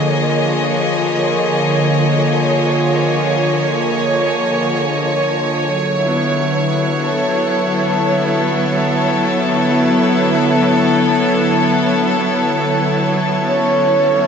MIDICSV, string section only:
0, 0, Header, 1, 2, 480
1, 0, Start_track
1, 0, Tempo, 500000
1, 13700, End_track
2, 0, Start_track
2, 0, Title_t, "String section"
2, 0, Program_c, 0, 48
2, 0, Note_on_c, 0, 53, 59
2, 0, Note_on_c, 0, 58, 62
2, 0, Note_on_c, 0, 68, 62
2, 0, Note_on_c, 0, 73, 72
2, 0, Note_on_c, 0, 75, 67
2, 5464, Note_off_c, 0, 75, 0
2, 5465, Note_on_c, 0, 54, 68
2, 5467, Note_off_c, 0, 68, 0
2, 5471, Note_off_c, 0, 53, 0
2, 5476, Note_off_c, 0, 58, 0
2, 5713, Note_on_c, 0, 64, 66
2, 5792, Note_on_c, 0, 59, 84
2, 6739, Note_on_c, 0, 69, 83
2, 13700, Note_off_c, 0, 54, 0
2, 13700, Note_off_c, 0, 59, 0
2, 13700, Note_off_c, 0, 64, 0
2, 13700, Note_off_c, 0, 69, 0
2, 13700, Note_off_c, 0, 73, 0
2, 13700, End_track
0, 0, End_of_file